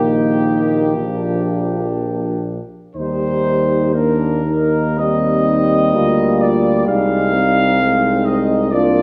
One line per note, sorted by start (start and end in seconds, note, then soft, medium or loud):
0.00 0.95 A#1 soft
0.00 0.98 D#3 soft
0.00 2.47 A#3 soft
0.00 0.92 D#4 soft
0.00 2.42 G4 soft
0.96 2.60 A#1 soft
0.96 2.63 F3 soft
0.96 2.63 D4 soft
2.95 5.96 D#2 soft
2.95 3.97 G3 soft
2.95 3.90 D#4 soft
2.95 3.90 C5 medium
3.93 5.00 A#3 soft
3.93 4.45 D4 soft
3.93 4.97 A#4 soft
4.45 5.91 D#4 soft
4.97 7.82 G3 soft
4.97 5.96 C4 soft
4.97 6.42 D#5 medium
5.94 6.87 D2 soft
5.94 6.90 A#3 soft
5.94 6.87 F4 soft
6.41 6.87 D5 medium
6.86 9.02 C2 soft
6.86 7.35 G#3 soft
6.86 8.67 D#4 soft
6.86 8.23 F5 medium
7.34 8.71 C4 soft
7.80 8.74 G#3 soft
8.26 8.72 D#5 soft
8.71 9.02 A#3 soft
8.71 9.02 D4 soft
8.71 9.02 F4 soft
8.71 9.02 D5 medium